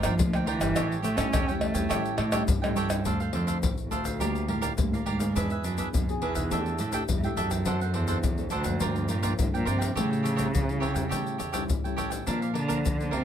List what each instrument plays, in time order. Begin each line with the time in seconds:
Already playing: nylon-string guitar G2 F3 A#3 D4
0.03 upright bass G2, cello F3, cavaquinho F4 A#4 D5 G5, pandeiro, tamborim, shaker, surdo
0.18 upright bass D2, nylon-string guitar D3 F3 A#3 D4, pandeiro, shaker, surdo
0.33 cavaquinho A#4 D5 G5, pandeiro, tamborim, shaker
0.46 cello E3, cavaquinho F4 A#4 D5 G5, pandeiro
0.60 upright bass G1, nylon-string guitar G3 C#4 E4, cavaquinho A#4 D5 G5, pandeiro, tamborim, shaker, surdo
0.75 upright bass A1, nylon-string guitar A2, cavaquinho G4 A4 C#5 G5, pandeiro, tamborim, shaker, surdo
0.92 pandeiro, shaker
1.02 cello A3, cavaquinho G4 A4 C#5 G5, pandeiro, shaker
1.17 upright bass A2, nylon-string guitar G3 C#4 E4, cello C#4, cavaquinho G4 A4 C#5 G5, pandeiro, tamborim, shaker, surdo
1.32 upright bass E2, nylon-string guitar E3, cavaquinho G4 A4 C#5 G5, pandeiro, tamborim, shaker, surdo
1.48 nylon-string guitar G3 C#4 E4, cavaquinho A4 C#5 G5, pandeiro, shaker
1.61 cello A3, pandeiro, tamborim, surdo
1.74 upright bass E2, nylon-string guitar G3 C#4 E4, cavaquinho A4 C#5 G5, pandeiro, shaker, surdo
1.89 upright bass A1, nylon-string guitar A2 G3 C#4 E4, cavaquinho G4 A4 C#5 G5, pandeiro, tamborim, shaker, surdo
2.06 pandeiro, shaker
2.17 cello A2, upright bass A2, cavaquinho G4 A4 C#5 G5, pandeiro, tamborim
2.32 nylon-string guitar G3 C#4 E4, cavaquinho G4 A4 C#5 G5, pandeiro, tamborim, shaker, surdo
2.47 cello G2, upright bass G2, nylon-string guitar E3, pandeiro, shaker, surdo
2.61 cello A2, nylon-string guitar G3 C#4 E4, cavaquinho A4 C#5 G5, pandeiro, tamborim, shaker
2.75 upright bass E2, cello G2, cavaquinho G4 A4 C#5 G5, pandeiro, shaker
2.89 cavaquinho A4 C#5 G5, pandeiro, tamborim, shaker, surdo
3.05 upright bass D2, nylon-string guitar D3 A3 C4 F4, cavaquinho D4 A4 C5 F5, pandeiro, shaker, surdo
3.20 cavaquinho A4 C5 F5, pandeiro, shaker
3.33 cello F2, cavaquinho D4 A4 C5 F5, pandeiro
3.47 nylon-string guitar A3 C4 F4, cavaquinho D4 A4 C5 F5, pandeiro, shaker, surdo
3.63 upright bass A1, nylon-string guitar A2, pandeiro, shaker, surdo
3.78 pandeiro, shaker
3.85 cello E2
3.89 cello D2, nylon-string guitar A3 C4 F4, cavaquinho D4 A4 C5 F5, pandeiro, shaker, surdo
4.04 upright bass A1, cavaquinho A4 C5 F5, pandeiro, shaker, surdo
4.19 upright bass D2, nylon-string guitar D3 G3 A#3 F4, cavaquinho G4 A#4 D5 F5, pandeiro, shaker, surdo
4.35 pandeiro, shaker
4.47 cello A2, nylon-string guitar G3 A#3 F4, cavaquinho G4 A#4 D5 F5, pandeiro
4.61 cavaquinho G4 A#4 D5 F5, pandeiro, shaker, surdo
4.77 upright bass D2, cello G2, nylon-string guitar D3 G3 A#3 F4, pandeiro, shaker, surdo
4.93 cello A2, cavaquinho A#4 D5 F5, pandeiro, shaker
5.06 upright bass D2, cello G#2, cavaquinho G4 A#4 D5 F5, pandeiro
5.18 nylon-string guitar B3 D4 G#4, cavaquinho A#4 D5 F5, pandeiro, shaker, surdo
5.35 upright bass E2, nylon-string guitar E3, cavaquinho D4 G#4 B4 E5, pandeiro, shaker, surdo
5.50 cavaquinho G#4 B4 E5, pandeiro, shaker
5.64 cello F#2, cavaquinho D4 G#4 B4 E5, pandeiro, shaker
5.77 nylon-string guitar B3 D4 G#4, cavaquinho D4 G#4 B4 E5, pandeiro, shaker, surdo
5.93 upright bass B1, cello F#2, nylon-string guitar B2, pandeiro, shaker, surdo
6.09 nylon-string guitar B3 D4 G#4, pandeiro, shaker
6.20 cello E2, cavaquinho D4 G#4 B4 E5, pandeiro, surdo
6.35 upright bass B1, cavaquinho G#4 B4 E5, pandeiro, shaker, surdo
6.50 upright bass E2, nylon-string guitar E3 A3 D4 G4, cavaquinho D4 A4 E5 G5, pandeiro, shaker, surdo
6.66 pandeiro, shaker
6.78 cello A2, cavaquinho D4 A4 E5 G5, pandeiro, shaker
6.91 nylon-string guitar A3 D4 G4, cavaquinho D4 A4 E5 G5, pandeiro, shaker, surdo
7.08 upright bass E2, cello G2, nylon-string guitar E3, pandeiro, shaker, surdo
7.23 cello A2, nylon-string guitar A3 D4 G4, cavaquinho A4 E5 G5, pandeiro, shaker
7.36 upright bass E2, cello F#2, cavaquinho D4 A4 E5 G5, pandeiro, shaker
7.51 cavaquinho A4 E5 G5, pandeiro, shaker, surdo
7.65 upright bass F#2, nylon-string guitar F#3 C4 D4 A4, cavaquinho D4 A4 C5 F#5, pandeiro, shaker, surdo
7.81 cavaquinho A4 C5 F#5, pandeiro, shaker
7.94 cello E2, cavaquinho D4 A4 C5 F#5, pandeiro
8.07 nylon-string guitar C4 D4 A4, cavaquinho D4 A4 C5 F#5, pandeiro, shaker, surdo
8.23 upright bass A1, nylon-string guitar F#3, pandeiro, shaker, surdo
8.38 nylon-string guitar C4 D4 A4, pandeiro, shaker
8.50 cello D2, cavaquinho D4 A4 C5 F#5, pandeiro, shaker
8.64 upright bass F#2, nylon-string guitar F3 A#3 D4, cavaquinho A4 C5 F#5, pandeiro, shaker, surdo
8.80 nylon-string guitar G2, upright bass G2, cavaquinho F4 A#4 D5 G5, pandeiro, shaker, surdo
8.96 pandeiro, shaker
9.08 cello A#2, cavaquinho F4 A#4 D5 G5, pandeiro, shaker
9.22 nylon-string guitar F3 A#3 D4, cavaquinho F4 A#4 D5 G5, pandeiro, shaker, surdo
9.39 upright bass G2, cello A2, nylon-string guitar D3, pandeiro, shaker, surdo
9.53 cello A#2, nylon-string guitar F3 A#3 D4, cavaquinho A#4 D5 G5, pandeiro, shaker
9.65 upright bass G2, cello C3, cavaquinho F4 A#4 D5 G5, pandeiro, shaker
9.78 cavaquinho A#4 D5 G5, pandeiro, shaker, surdo
9.95 upright bass A2, nylon-string guitar A2 G3 C#4 E4, cello C#3, cavaquinho G4 A4 C#5 G5, pandeiro, shaker, surdo
10.10 cavaquinho A4 C#5 G5, pandeiro, shaker
10.23 cavaquinho G4 A4 C#5 G5, pandeiro, shaker
10.36 nylon-string guitar G3 C#4 E4, cavaquinho G4 A4 C#5 G5, pandeiro, shaker, surdo
10.54 upright bass E2, nylon-string guitar E3, pandeiro, shaker, surdo
10.69 nylon-string guitar G3 C#4 E4, pandeiro, shaker
10.80 cavaquinho G4 A4 C#5 G5, pandeiro, surdo
10.94 upright bass E2, nylon-string guitar G3 C#4 E4, cavaquinho A4 C#5 G5, pandeiro, shaker, surdo
11.09 upright bass A2, nylon-string guitar A2 G3 C#4 E4, cavaquinho G4 A4 C#5 G5, pandeiro, shaker, surdo
11.27 pandeiro, shaker
11.38 upright bass E2, cavaquinho G4 A4 C#5 G5, pandeiro, shaker
11.52 nylon-string guitar G3 C#4 E4, cavaquinho G4 A4 C#5 G5, pandeiro, shaker, surdo
11.68 upright bass C#2, nylon-string guitar E3, pandeiro, shaker, surdo
11.84 nylon-string guitar G3 C#4 E4, cavaquinho A4 C#5 G5, pandeiro, shaker
11.96 upright bass A1, cavaquinho G4 A4 C#5 G5, pandeiro, shaker
12.10 cavaquinho A4 C#5 G5, pandeiro, shaker, surdo
12.26 upright bass A#2, cello A#2, nylon-string guitar A#2 F3 A#3 D4, cavaquinho D4 A#4 D5 F5, pandeiro, shaker, surdo
12.42 cavaquinho A#4 D5 F5, pandeiro, shaker
12.53 cello D3, cavaquinho D4 A#4 D5 F5, pandeiro
12.68 nylon-string guitar F3 A#3 D4, cavaquinho D4 A#4 D5 F5, pandeiro, shaker, surdo
12.84 upright bass F2, nylon-string guitar F3, pandeiro, shaker, surdo
13.00 nylon-string guitar F3 A#3 D4, pandeiro, shaker
13.11 cello C3, cavaquinho D4 A#4 D5 F5, pandeiro, surdo